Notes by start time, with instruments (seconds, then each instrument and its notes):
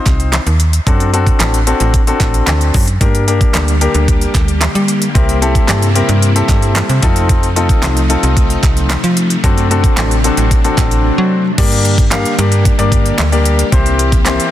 Already playing: grand piano C4 D#4 F4 C5
0.06 fm bass C2, kick, clap, closed hi-hat
0.20 closed hi-hat
0.32 snare, clap, closed hi-hat
0.47 fm bass D#2, closed hi-hat
0.60 closed hi-hat
0.73 closed hi-hat
0.86 fm bass F#2, grand piano C4 D4 F#4 A4, kick, closed hi-hat
1.00 closed hi-hat
1.13 grand piano C4 D4 F#4 A4, closed hi-hat
1.27 kick, closed hi-hat
1.39 fm bass A1, snare, clap, closed hi-hat
1.54 closed hi-hat
1.67 grand piano C4 D4 F#4 A4, closed hi-hat
1.80 fm bass A1, closed hi-hat
1.94 kick, closed hi-hat
2.07 grand piano C4 D4 F#4 A4, closed hi-hat
2.20 fm bass A1, kick, clap, closed hi-hat
2.34 closed hi-hat
2.47 fm bass D2, snare, clap, closed hi-hat
2.61 closed hi-hat
2.74 fm bass F#2, kick, open hi-hat
2.88 closed hi-hat
3.01 fm bass G2, string machine D3 G3 A#3 G4, grand piano A#3 D4 G4 A#4, kick, closed hi-hat
3.15 closed hi-hat
3.27 grand piano A#3 D4 G4 A#4, closed hi-hat
3.41 kick, closed hi-hat
3.54 fm bass D2, snare, clap, closed hi-hat
3.68 closed hi-hat
3.81 grand piano A#3 D4 G4 A#4, closed hi-hat
3.94 fm bass D2, closed hi-hat
4.08 kick, closed hi-hat
4.21 closed hi-hat
4.35 fm bass D2, kick, clap, closed hi-hat
4.48 closed hi-hat
4.61 snare, clap, closed hi-hat
4.75 fm bass G3, closed hi-hat
4.88 closed hi-hat
5.02 closed hi-hat
5.15 fm bass C2, string machine C3 G3 E4, grand piano C4 E4 G4 A#4, kick, closed hi-hat
5.29 closed hi-hat
5.42 grand piano C4 E4 G4 A4, closed hi-hat
5.55 kick, closed hi-hat
5.68 fm bass G2, snare, clap, closed hi-hat
5.82 closed hi-hat
5.95 grand piano C4 E4 G4 A#4, closed hi-hat
6.09 fm bass G2, closed hi-hat
6.22 closed hi-hat
6.35 grand piano C4 E4 G4 A4, closed hi-hat
6.49 fm bass G2, kick, clap, closed hi-hat
6.62 closed hi-hat
6.75 snare, clap, closed hi-hat
6.89 fm bass C3, closed hi-hat
7.02 fm bass F2, string machine C3 F3 A3 D#4, grand piano C4 D#4 F4 A4, kick, closed hi-hat
7.16 closed hi-hat
7.29 kick, closed hi-hat
7.43 closed hi-hat
7.56 grand piano C4 D#4 F4 A4, closed hi-hat
7.69 kick, closed hi-hat
7.82 fm bass C2, snare, clap, closed hi-hat
7.97 closed hi-hat
8.09 grand piano C4 D#4 F4 A4, closed hi-hat
8.23 fm bass C2, closed hi-hat
8.37 kick, closed hi-hat
8.50 closed hi-hat
8.63 fm bass C2, kick, clap, closed hi-hat
8.77 closed hi-hat
8.90 snare, clap, closed hi-hat
9.04 fm bass F3, closed hi-hat
9.17 closed hi-hat
9.30 closed hi-hat
9.43 fm bass F#2, string machine F#3 D4, grand piano C4 D4 F#4 A4, kick, closed hi-hat
9.58 closed hi-hat
9.70 grand piano C4 D4 F#4 A4, closed hi-hat
9.84 kick, closed hi-hat
9.97 fm bass A1, snare, clap, closed hi-hat
10.11 closed hi-hat
10.24 grand piano C4 D4 F#4 A4, closed hi-hat
10.37 fm bass A1, closed hi-hat
10.51 kick, closed hi-hat
10.64 grand piano C4 D4 F#4 A4, closed hi-hat
10.78 fm bass A1, kick, clap, closed hi-hat
10.91 closed hi-hat
11.18 fm bass F#3
11.58 fm bass G2, string machine D3 G3 A#3 G4, grand piano A#3 D4 G4 A#4 D5, kick, closed hi-hat, crash
11.72 closed hi-hat
11.85 closed hi-hat
11.98 kick, closed hi-hat
12.11 grand piano A#3 D4 G4 A#4 F5, snare, clap, closed hi-hat
12.25 closed hi-hat
12.38 fm bass G2, grand piano A#3 D4 G4 A#4 D5, closed hi-hat
12.52 closed hi-hat
12.65 kick, closed hi-hat
12.78 fm bass G2, grand piano A#3 D4 G4 A#4 D5, closed hi-hat
12.92 kick, closed hi-hat
13.06 closed hi-hat
13.18 fm bass D2, snare, clap, closed hi-hat
13.32 grand piano A#3 D4 G4 A#4 D5, closed hi-hat
13.45 closed hi-hat
13.59 closed hi-hat
13.72 fm bass C2, string machine E3 A#3 C4, grand piano C4 E4 G4 A#4 C5, kick, closed hi-hat
13.86 closed hi-hat
13.99 closed hi-hat
14.12 kick, closed hi-hat
14.25 grand piano C4 E4 G4 A#4 C5, snare, clap, closed hi-hat
14.40 closed hi-hat